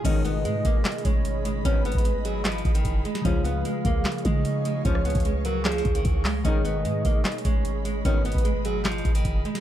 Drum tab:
CC |x-----------------------------------------------------------------------------------------------|------------------------------------------------------------------------------------------------|------------------------------------------------------------------------------------------------|------------------------------------------------------------------------------------------------|
HH |x-----------x-----------x-----------x-----------x---x---x---x-----------x-----------x-----------|x-----------x---x---x---x-----------x-----------x---x---x---x-----x-----x-----------x-----x-----|x-----------x-----------x-----------x-----------x---x---x---x-----------x-----------x-----------|x-----------x--x--x--x--x-----------x-----------x---x---x---x-----x-----x-----------o-----------|
CP |------------------------------------------------x-----------------------------------------------|------------------------------------------------x-----------------------------------------------|------------------------------------------------x-----------------------------------------------|------------------------------------------------x-----------------------------------x-----------|
SD |------------------------------------------------o-----------------------------------------------|------------------------------------------------o-----------------------------------------o-----|------------------------------------------------o-----------------------------------------------|------r-----------------------------------------o-----------------------------------o-----------|
BD |o-----------------------------------o-----------------------o-----------------------------------|o-----------------o-----------------------------------------o-----------o-----------------------|o-----------------------------------o-----------------------o-----------------------------------|o-----------------o-----------------------------------------o-----------o-----------------------|

CC |------------------------------------------------------------------------------------------------|------------------------------------------------------------------------------------------------|
HH |x-----------x-----------x-----------x-----------x---x---x---x-----------x-----------x-----------|x-----------x---x---x---x-----------x-----------x---x---x---x-----x-----x-----------x-----x-----|
CP |------------------------------------------------x-----------------------------------------------|------------------------------------------------x-----------------------------------------------|
SD |------------------------------------------------o-----------------------------------------------|------------------------------------------------o-----------------------------------------o-----|
BD |o-----------------------------------o-----------------------o-----------------------------------|o-----------------o-----------------------------------------o-----------o-----------------------|